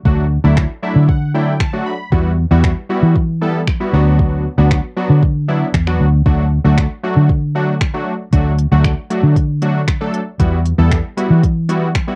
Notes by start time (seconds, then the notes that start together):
0.05 D2 F#3 A3 D4 F#4, kick
0.44 D2 F#3 A3 D4 E4
0.57 finger snap, kick
0.83 F#3 A3 D4 E4 E5
0.96 D3
1.09 F#5, kick
1.34 F#3 A3 D4 E4 G5
1.60 A5, finger snap, kick
1.73 F#3 A3 D4 F#4
1.86 B5
2.12 E2 G3 B3 E4 F#4, kick
2.51 E2 G3 B3 E4 F#4
2.64 finger snap, kick
2.89 G3 B3 E4 F#4
3.03 E3
3.16 kick
3.41 G3 B3 E4 A4
3.67 finger snap, kick
3.80 G3 B3 E4 F#4
3.93 D2 F#3 B3 D4 F#4
4.19 kick
4.58 D2 F#3 B3 D4 F#4
4.71 finger snap, kick
4.96 F#3 B3 D4 F#4
5.10 D3
5.23 kick
5.48 F#3 B3 D4 E4
5.74 E2, finger snap, kick
5.87 F#3 B3 D4 F#4, finger snap
6.00 D2
6.26 D2 F#3 A3 D4 F#4, kick
6.64 D2 F#3 A3 D4 F#4
6.78 finger snap, kick
7.03 F#3 A3 D4 F#4
7.16 D3
7.29 kick
7.55 F#3 A3 D4 F#4
7.81 finger snap, kick
7.94 F#3 A3 D4 F#4
8.33 D2 F#3 A3 D4 F#4, kick, closed hi-hat
8.59 closed hi-hat
8.71 D2 F#3 A3 D4 F#4
8.85 finger snap, kick, closed hi-hat
9.10 F#3 A3 D4 F#4, closed hi-hat
9.23 D3
9.36 kick, closed hi-hat
9.62 F#3 A3 D4 F#4, closed hi-hat
9.88 finger snap, kick, closed hi-hat
10.01 F#3 A3 D4 A4
10.14 closed hi-hat
10.39 E2 G3 B3 E4 F#4, kick, closed hi-hat
10.66 closed hi-hat
10.78 E2 G3 B3 E4 A4
10.91 finger snap, kick, closed hi-hat
11.17 G3 B3 E4 F#4, closed hi-hat
11.30 E3
11.43 kick, closed hi-hat
11.69 G3 B3 E4 F#4, closed hi-hat
11.95 finger snap, kick, closed hi-hat
12.07 G3 B3 E4 F#4